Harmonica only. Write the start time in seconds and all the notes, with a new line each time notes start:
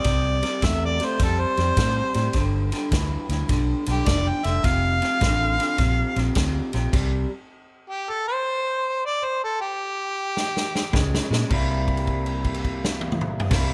Already playing: D5
0.65 E5
0.85 D5
1.05 C5
1.23 A4
1.40 C5
3.91 G4
4.09 D5
4.28 G5
4.46 E5
4.66 F5
7.90 G4
8.10 A4
8.28 C5
9.06 D5
9.25 C5
9.44 A4
9.61 G4